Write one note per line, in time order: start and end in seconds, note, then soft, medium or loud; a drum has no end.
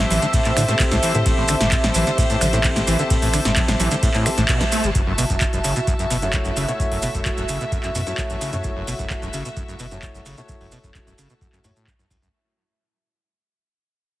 0.00 0.66 C4 medium
0.00 0.66 G4 medium
0.00 4.95 G4 medium
0.00 0.66 A4 medium
0.00 4.95 C5 medium
0.00 0.66 E5 loud
0.00 4.94 E5 medium
0.00 12.34 A5 medium
0.10 0.19 A1 loud
0.10 0.20 E3 medium
0.10 open hi-hat loud
0.10 low conga medium
0.10 maracas medium
0.22 0.26 D3 medium
0.22 snare soft
0.22 closed hi-hat medium
0.22 maracas soft
0.33 0.40 A2 medium
0.33 kick loud
0.33 closed hi-hat medium
0.33 ride medium
0.33 maracas soft
0.45 0.52 A2 loud
0.45 clap soft
0.45 closed hi-hat soft
0.45 maracas soft
0.57 0.65 A2 medium
0.57 0.63 D3 loud
0.57 finger snap medium
0.57 open hi-hat loud
0.57 maracas medium
0.68 0.75 A2 medium
0.68 1.12 C4 medium
0.68 1.12 G4 medium
0.68 1.12 A4 medium
0.68 1.12 E5 medium
0.68 snare soft
0.68 closed hi-hat medium
0.68 maracas soft
0.79 0.84 A2 medium
0.79 kick loud
0.79 clap loud
0.79 closed hi-hat medium
0.79 ride medium
0.79 maracas medium
0.91 1.00 C2 loud
0.91 0.98 A2 medium
0.91 snare medium
0.91 closed hi-hat soft
0.91 maracas soft
1.03 1.13 E3 medium
1.03 open hi-hat loud
1.03 maracas loud
1.14 1.23 A2 loud
1.14 1.18 D3 medium
1.14 2.50 C4 medium
1.14 2.50 G4 medium
1.14 2.50 A4 medium
1.14 2.50 E5 loud
1.14 closed hi-hat medium
1.14 maracas soft
1.26 1.56 A1 loud
1.26 1.32 A2 medium
1.26 kick loud
1.26 closed hi-hat medium
1.26 ride medium
1.26 maracas medium
1.38 1.44 A2 loud
1.48 1.55 D3 loud
1.48 finger snap medium
1.48 open hi-hat loud
1.48 maracas loud
1.61 1.78 G1 medium
1.61 1.67 A2 medium
1.61 snare medium
1.61 closed hi-hat medium
1.61 maracas soft
1.72 1.76 A2 medium
1.72 kick loud
1.72 clap loud
1.72 closed hi-hat medium
1.72 ride medium
1.72 maracas medium
1.84 1.92 G1 loud
1.84 1.90 A2 medium
1.84 snare medium
1.84 closed hi-hat soft
1.84 low conga medium
1.84 maracas soft
1.94 2.04 A1 loud
1.94 2.05 E3 medium
1.94 open hi-hat loud
1.94 low conga medium
1.94 maracas medium
2.07 2.11 D3 medium
2.07 snare soft
2.07 closed hi-hat medium
2.07 maracas soft
2.18 2.25 A2 medium
2.18 kick loud
2.18 closed hi-hat medium
2.18 ride medium
2.18 maracas medium
2.30 2.36 A2 loud
2.30 closed hi-hat soft
2.30 maracas soft
2.41 2.83 A1 loud
2.41 2.48 D3 loud
2.41 finger snap medium
2.41 open hi-hat loud
2.41 low conga medium
2.41 maracas medium
2.53 2.59 A2 medium
2.53 2.96 C4 medium
2.53 2.96 G4 medium
2.53 2.96 A4 medium
2.53 2.96 E5 medium
2.53 snare soft
2.53 closed hi-hat medium
2.53 maracas soft
2.64 2.68 A2 medium
2.64 kick loud
2.64 clap loud
2.64 closed hi-hat medium
2.64 ride medium
2.64 maracas soft
2.76 2.82 A2 medium
2.76 snare medium
2.76 closed hi-hat soft
2.76 maracas soft
2.87 2.96 A1 medium
2.87 2.97 E3 medium
2.87 open hi-hat loud
2.87 maracas loud
2.99 3.03 D3 medium
2.99 4.24 C4 medium
2.99 4.24 G4 medium
2.99 4.24 A4 medium
2.99 4.24 E5 loud
2.99 closed hi-hat medium
2.99 maracas soft
3.10 3.17 A2 medium
3.10 kick loud
3.10 closed hi-hat medium
3.10 ride medium
3.10 maracas soft
3.22 3.39 A1 medium
3.22 3.28 A2 loud
3.22 open hi-hat medium
3.22 maracas soft
3.33 3.40 D3 loud
3.33 finger snap medium
3.33 open hi-hat loud
3.33 maracas medium
3.45 3.62 G1 medium
3.45 3.52 A2 medium
3.45 snare medium
3.45 closed hi-hat medium
3.45 maracas soft
3.56 3.61 A2 medium
3.56 kick loud
3.56 clap loud
3.56 closed hi-hat medium
3.56 ride medium
3.56 low conga medium
3.56 maracas soft
3.68 3.77 G1 loud
3.68 3.75 A2 medium
3.68 snare medium
3.68 closed hi-hat soft
3.68 low conga medium
3.68 maracas soft
3.80 3.88 A1 loud
3.80 3.89 E3 medium
3.80 open hi-hat loud
3.80 low conga medium
3.80 maracas loud
3.91 3.95 D3 medium
3.91 snare soft
3.91 closed hi-hat medium
3.91 maracas soft
4.03 4.09 A2 medium
4.03 kick loud
4.03 closed hi-hat medium
4.03 ride medium
4.03 maracas soft
4.14 4.28 A2 loud
4.14 clap soft
4.14 closed hi-hat soft
4.14 maracas soft
4.26 4.30 A3 medium
4.26 4.32 C4 medium
4.26 4.32 G4 medium
4.26 4.32 A4 medium
4.26 4.32 E5 medium
4.26 finger snap medium
4.26 open hi-hat loud
4.26 maracas medium
4.37 4.46 A1 loud
4.37 4.44 A2 loud
4.37 snare soft
4.37 closed hi-hat medium
4.37 maracas soft
4.48 4.62 B2 medium
4.48 kick loud
4.48 clap loud
4.48 closed hi-hat medium
4.48 ride medium
4.48 maracas medium
4.61 4.65 A3 medium
4.61 kick medium
4.61 snare medium
4.61 closed hi-hat soft
4.61 maracas soft
4.72 4.85 A3 medium
4.72 open hi-hat loud
4.72 maracas medium
4.84 4.92 G1 medium
4.84 4.90 G3 medium
4.84 closed hi-hat medium
4.84 maracas soft
4.95 5.25 F#1 loud
4.95 5.02 F#2 medium
4.95 12.34 F#4 medium
4.95 12.34 E5 medium
4.95 kick loud
4.95 closed hi-hat medium
4.95 maracas medium
5.05 5.13 F#2 loud
5.05 12.34 E5 medium
5.18 5.25 B2 loud
5.18 open hi-hat loud
5.18 maracas loud
5.30 5.47 E1 medium
5.30 5.36 F#2 medium
5.30 kick medium
5.30 closed hi-hat medium
5.30 maracas soft
5.41 5.45 F#2 medium
5.41 kick loud
5.41 clap loud
5.41 closed hi-hat medium
5.41 maracas soft
5.53 5.61 E1 medium
5.53 5.59 F#2 medium
5.53 closed hi-hat soft
5.53 maracas soft
5.64 5.73 F#1 loud
5.64 5.74 C#3 medium
5.64 open hi-hat loud
5.64 maracas loud
5.76 5.80 B2 medium
5.76 closed hi-hat medium
5.76 maracas soft
5.87 5.94 F#2 medium
5.87 kick loud
5.87 closed hi-hat medium
5.87 maracas soft
5.99 6.05 F#2 loud
5.99 closed hi-hat soft
5.99 maracas soft
6.10 6.52 F#1 loud
6.10 6.17 B2 loud
6.10 open hi-hat loud
6.10 maracas medium
6.22 6.28 F#2 medium
6.22 6.66 A3 medium
6.22 6.66 E4 medium
6.22 6.66 F#4 medium
6.22 6.66 C#5 medium
6.22 closed hi-hat medium
6.22 maracas soft
6.33 6.37 F#2 medium
6.33 kick loud
6.33 clap loud
6.33 closed hi-hat medium
6.33 maracas soft
6.45 6.52 F#2 medium
6.45 closed hi-hat soft
6.45 maracas soft
6.57 6.65 F#1 medium
6.57 6.66 C#3 medium
6.57 open hi-hat loud
6.57 maracas medium
6.68 6.72 B2 medium
6.68 8.04 A3 medium
6.68 8.04 E4 medium
6.68 8.04 F#4 medium
6.68 8.04 C#5 medium
6.68 closed hi-hat medium
6.68 maracas soft
6.80 6.86 F#2 medium
6.80 kick loud
6.80 closed hi-hat medium
6.80 maracas soft
6.91 7.08 F#1 medium
6.91 6.98 F#2 loud
6.91 open hi-hat medium
7.02 7.09 B2 loud
7.02 open hi-hat loud
7.02 maracas medium
7.15 7.32 E1 medium
7.15 7.21 F#2 medium
7.15 kick medium
7.15 closed hi-hat medium
7.15 maracas soft
7.25 7.30 F#2 medium
7.25 kick loud
7.25 clap loud
7.25 closed hi-hat medium
7.25 maracas medium
7.37 7.46 E1 medium
7.37 7.44 F#2 medium
7.37 closed hi-hat soft
7.37 maracas soft
7.49 7.58 F#1 medium
7.49 7.59 C#3 medium
7.49 open hi-hat loud
7.49 maracas medium
7.61 7.65 B2 medium
7.61 closed hi-hat medium
7.61 maracas soft
7.72 7.79 F#2 medium
7.72 kick loud
7.72 closed hi-hat medium
7.72 maracas medium
7.83 7.90 F#2 loud
7.83 clap soft
7.83 closed hi-hat soft
7.83 maracas soft
7.95 8.04 F#2 loud
7.95 8.02 B2 loud
7.95 open hi-hat loud
7.95 maracas loud
8.06 8.13 F#2 medium
8.06 8.50 A3 medium
8.06 8.50 E4 medium
8.06 8.50 F#4 medium
8.06 8.50 C#5 medium
8.06 closed hi-hat medium
8.06 maracas soft
8.18 8.22 F#2 medium
8.18 kick loud
8.18 clap loud
8.18 closed hi-hat medium
8.18 maracas medium
8.30 8.38 A1 loud
8.30 8.36 F#2 medium
8.30 closed hi-hat soft
8.30 maracas soft
8.41 8.51 C#3 medium
8.41 open hi-hat loud
8.41 maracas medium
8.53 8.61 F#2 loud
8.53 8.57 B2 medium
8.53 9.89 A3 medium
8.53 9.89 E4 medium
8.53 9.89 F#4 medium
8.53 9.89 C#5 medium
8.53 closed hi-hat medium
8.53 maracas soft
8.64 8.94 F#1 loud
8.64 8.71 F#2 medium
8.64 kick loud
8.64 closed hi-hat medium
8.64 maracas medium
8.76 8.82 F#2 loud
8.87 8.94 B2 loud
8.87 open hi-hat loud
8.87 maracas loud
8.99 9.16 E1 medium
8.99 9.05 F#2 medium
8.99 kick medium
8.99 closed hi-hat soft
8.99 maracas soft
9.10 9.14 F#2 medium
9.10 kick loud
9.10 clap loud
9.10 closed hi-hat medium
9.10 maracas medium
9.22 9.31 E1 loud
9.22 9.29 F#2 medium
9.22 closed hi-hat soft
9.22 maracas soft
9.33 9.42 F#1 medium
9.33 9.43 C#3 medium
9.33 open hi-hat loud
9.33 maracas loud
9.45 9.49 B2 medium
9.45 closed hi-hat soft
9.45 maracas soft
9.57 9.63 F#2 medium
9.57 kick loud
9.57 closed hi-hat medium
9.57 maracas soft
9.68 9.75 F#2 loud
9.68 closed hi-hat soft
9.68 maracas soft
9.79 10.21 F#1 loud
9.79 9.86 B2 loud
9.79 open hi-hat loud
9.79 maracas medium
9.91 9.98 F#2 medium
9.91 10.35 A3 medium
9.91 10.35 E4 medium
9.91 10.35 F#4 medium
9.91 10.35 C#5 medium
9.91 closed hi-hat medium
9.91 maracas soft
10.02 10.07 F#2 medium
10.02 kick loud
10.02 clap loud
10.02 closed hi-hat medium
10.02 maracas soft
10.14 10.21 F#2 medium
10.14 closed hi-hat soft
10.14 maracas soft
10.26 10.35 F#1 medium
10.26 10.36 C#3 medium
10.26 open hi-hat loud
10.26 maracas loud
10.37 10.41 B2 medium
10.37 11.63 A3 medium
10.37 11.63 E4 medium
10.37 11.63 F#4 medium
10.37 11.63 C#5 medium
10.37 closed hi-hat medium
10.37 maracas soft
10.48 10.55 F#2 medium
10.48 kick loud
10.48 closed hi-hat medium
10.48 maracas soft
10.61 10.78 F#1 medium
10.61 10.67 F#2 loud
10.61 open hi-hat medium
10.72 10.79 B2 loud
10.72 open hi-hat loud
10.72 maracas medium
10.84 11.01 E1 medium
10.84 10.90 F#2 medium
10.84 kick medium
10.84 closed hi-hat soft
10.84 maracas soft
10.95 10.99 F#2 medium
10.95 kick loud
10.95 clap loud
10.95 closed hi-hat medium
10.95 maracas soft
11.07 11.15 E1 loud
11.07 11.13 F#2 medium
11.07 closed hi-hat soft
11.07 maracas soft
11.18 11.27 F#1 medium
11.18 11.28 C#3 medium
11.18 open hi-hat loud
11.18 maracas medium
11.30 11.34 B2 medium
11.30 closed hi-hat soft
11.30 maracas soft
11.41 11.48 F#2 medium
11.41 kick loud
11.41 closed hi-hat medium
11.41 maracas soft
11.53 11.59 F#2 loud
11.53 clap soft
11.53 closed hi-hat soft
11.53 maracas soft
11.64 11.73 F#2 loud
11.64 11.71 A2 loud
11.64 11.71 A3 medium
11.64 11.71 E4 medium
11.64 11.71 F#4 medium
11.64 11.71 C#5 medium
11.64 open hi-hat loud
11.64 maracas loud
11.76 11.89 A2 medium
11.76 closed hi-hat soft
11.76 maracas soft
11.87 11.94 F#2 loud
11.87 kick loud
11.87 clap loud
11.87 closed hi-hat medium
11.87 maracas medium
11.99 12.08 B1 medium
11.99 12.05 F#2 medium
11.99 closed hi-hat soft
11.99 maracas soft
12.10 12.19 C#2 medium
12.10 12.17 F#2 medium
12.10 kick medium
12.10 open hi-hat loud
12.10 maracas loud
12.22 12.31 C#2 medium
12.22 12.29 F#2 medium
12.22 closed hi-hat soft
12.22 maracas soft